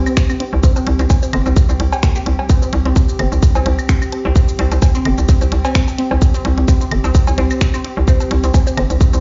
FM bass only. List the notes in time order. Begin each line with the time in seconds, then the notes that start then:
0.53 C2
0.87 C2
0.99 C2
1.33 G1
1.46 C2
1.69 C2
1.80 C2
2.26 C2
2.73 C2
2.86 C2
3.19 G1
3.32 C2
3.55 C2
3.66 C2
4.25 C2
4.59 C2
4.72 C2
5.05 G1
5.18 C2
5.41 C2
5.52 C2
6.11 C2
6.45 C2
6.58 C2
6.91 G1
7.04 C2
7.27 C2
7.38 C2
7.97 C2
8.31 C2
8.44 C2
8.77 G1
8.90 C2
9.13 C2